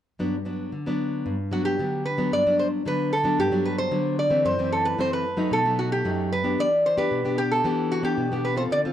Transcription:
0.19 nylon-string guitar G2 F#3 B3 D4
0.45 nylon-string guitar F#3 B3 D4
0.72 nylon-string guitar D3
0.86 nylon-string guitar F#3 B3 D4
1.26 nylon-string guitar G2
1.51 nylon-string guitar F#3 B3 D4, resonator guitar played with a steel bar F#4
1.65 resonator guitar played with a steel bar G4
1.79 nylon-string guitar D3 F#3 B3 D4
2.06 resonator guitar played with a steel bar B4
2.18 nylon-string guitar F#3 B3 D4
2.32 nylon-string guitar G2, resonator guitar played with a steel bar D5
2.46 nylon-string guitar F#3 B3 D4
2.59 resonator guitar played with a steel bar C5
2.85 nylon-string guitar D3 F#3 B3 D4, resonator guitar played with a steel bar B4
3.13 resonator guitar played with a steel bar A4
3.24 nylon-string guitar F#3 B3 D4
3.39 nylon-string guitar G2, resonator guitar played with a steel bar G4
3.52 nylon-string guitar F#3 B3 D4
3.65 resonator guitar played with a steel bar B4
3.78 resonator guitar played with a steel bar C5
3.91 nylon-string guitar D3 F#3 B3 D4
4.19 resonator guitar played with a steel bar D5
4.30 nylon-string guitar E3 A3 C4
4.45 nylon-string guitar F#2, resonator guitar played with a steel bar C5
4.59 nylon-string guitar E3 A3 C4
4.72 resonator guitar played with a steel bar A4
4.85 resonator guitar played with a steel bar B4
4.98 nylon-string guitar F#2 E3 A3 C4, resonator guitar played with a steel bar C5
5.13 resonator guitar played with a steel bar B4
5.37 nylon-string guitar F#3 A3 D#4
5.51 nylon-string guitar B2, resonator guitar played with a steel bar A4
5.65 nylon-string guitar F#3 A3 D#4
5.79 resonator guitar played with a steel bar F#4
5.92 resonator guitar played with a steel bar G4
6.05 nylon-string guitar F#2 F#3 A3 D#4
6.33 resonator guitar played with a steel bar B4
6.44 nylon-string guitar B3 D4 G4
6.59 nylon-string guitar E3, resonator guitar played with a steel bar D5
6.86 resonator guitar played with a steel bar C5
6.97 nylon-string guitar B3 D4 G4, resonator guitar played with a steel bar B4
7.11 nylon-string guitar B2
7.25 nylon-string guitar B3 D4 G4
7.38 resonator guitar played with a steel bar G4
7.51 resonator guitar played with a steel bar A4
7.64 nylon-string guitar E3 B3 D4 G4
7.92 resonator guitar played with a steel bar F#4
8.02 nylon-string guitar B3 D4 G4, resonator guitar played with a steel bar G4
8.17 nylon-string guitar B2
8.32 nylon-string guitar B3 D4 G4
8.45 resonator guitar played with a steel bar B4
8.56 nylon-string guitar C4 F4 A4, resonator guitar played with a steel bar C5
8.71 nylon-string guitar D3, resonator guitar played with a steel bar D5
8.85 nylon-string guitar C4 F4 A4

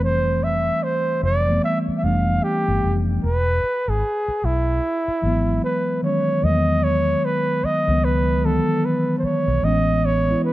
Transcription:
Already playing: fingered electric bass F1, tine electric piano E3 G3 A3 C4
0.04 flugelhorn C5
0.44 flugelhorn E5
0.83 flugelhorn C5
1.23 fingered electric bass F1, flugelhorn D5
1.46 tine electric piano E3 G3 A3
1.51 tine electric piano B3
1.64 flugelhorn E5
1.88 muted fingered electric bass stroke
1.98 tine electric piano E3, flugelhorn E5
2.03 fingered electric bass F1, tine electric piano G3 A3 D4, flugelhorn F5
2.44 flugelhorn G4
2.68 fingered electric bass G1
2.84 fingered electric bass F1
3.24 fingered electric bass E1, flugelhorn B4
3.88 fingered electric bass G#1, flugelhorn G#4
4.28 muted fingered electric bass stroke
4.44 fingered electric bass B1, flugelhorn E4
5.08 muted fingered electric bass stroke
5.22 fingered electric bass G#1, tine electric piano E3 F#3 G#3
5.26 tine electric piano B3
5.64 flugelhorn B4
6.02 tine electric piano D#3 F#3 G#3, flugelhorn C#5
6.06 tine electric piano C#4
6.42 fingered electric bass E2, tine electric piano D#3 F#3 G#3, flugelhorn D#5
6.46 tine electric piano A#3
6.53 tine electric piano B3
6.84 flugelhorn C#5
7.25 flugelhorn B4
7.64 flugelhorn D#5, muted fingered electric bass stroke
7.86 fingered electric bass C#2, tine electric piano D#3 F#3 G#3
7.91 tine electric piano B3
8.05 flugelhorn B4
8.42 tine electric piano D#3 E3 F#3, flugelhorn A4
8.46 tine electric piano B3
8.85 flugelhorn B4
9.19 flugelhorn C5
9.23 flugelhorn C#5, muted fingered electric bass stroke
9.48 fingered electric bass B1
9.62 fingered electric bass A1, tine electric piano E3 G#3 B3, flugelhorn D#5
9.66 tine electric piano C#4
10.05 flugelhorn C#5
10.26 tine electric piano E3 G#3 B3
10.31 tine electric piano E4
10.45 flugelhorn B4

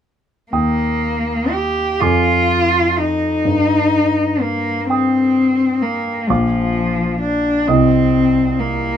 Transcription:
0.52 grand piano D#2 G5 D#6, cello A#3
1.51 cello G4
2.00 grand piano F2 G#5 D6, cello F4
2.98 cello D#4
3.45 grand piano G2
4.41 cello A#3
4.90 cello C4, grand piano G5 D#6
5.82 cello A#3
6.29 grand piano A#1 F5 D6, cello F3
7.21 cello D4
7.68 grand piano C2 D#5 D#6, cello C4
8.59 cello A#3

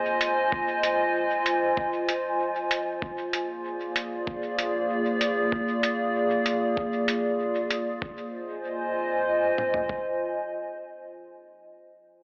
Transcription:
Already playing: ambient pad F4 C5 D#5 G#5
0.21 closed hi-hat
0.52 kick
0.83 closed hi-hat
1.46 closed hi-hat
1.77 kick
2.09 closed hi-hat
2.71 closed hi-hat
3.02 ambient pad A#3, kick
3.31 ambient pad G#4, closed hi-hat
3.48 ambient pad D5
3.96 closed hi-hat
4.27 kick
4.59 closed hi-hat
5.21 closed hi-hat
5.52 kick
5.83 closed hi-hat
6.46 closed hi-hat
6.77 kick
7.08 closed hi-hat
7.71 closed hi-hat
8.02 ambient pad F4, kick
8.12 ambient pad C5
8.21 ambient pad D#5
8.30 ambient pad G#5
9.58 mid tom
9.74 floor tom
9.89 kick

